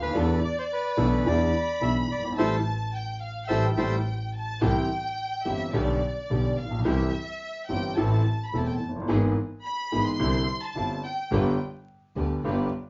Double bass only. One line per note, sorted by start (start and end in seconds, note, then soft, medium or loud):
0.00 0.13 D2 medium
0.14 0.37 E2 medium
0.97 1.21 B1 medium
1.24 1.48 E2 medium
1.80 2.04 B1 medium
2.09 2.36 G1 medium
2.37 2.58 A1 medium
3.49 3.70 A1 medium
3.77 3.98 A1 medium
4.61 4.85 C2 medium
5.46 5.69 G1 medium
5.74 5.97 B1 medium
6.30 6.53 B1 medium
6.57 6.85 A#1 medium
6.85 7.09 C2 loud
7.70 7.93 G1 medium
7.97 8.21 A1 loud
8.53 8.77 E1 medium
8.81 9.08 F#1 medium
9.09 9.32 G#1 loud
9.92 10.16 G#1 medium
10.20 10.43 C2 medium
10.75 10.99 G1 medium
11.32 11.55 G1 loud
12.16 12.39 D2 medium
12.44 12.67 G1 medium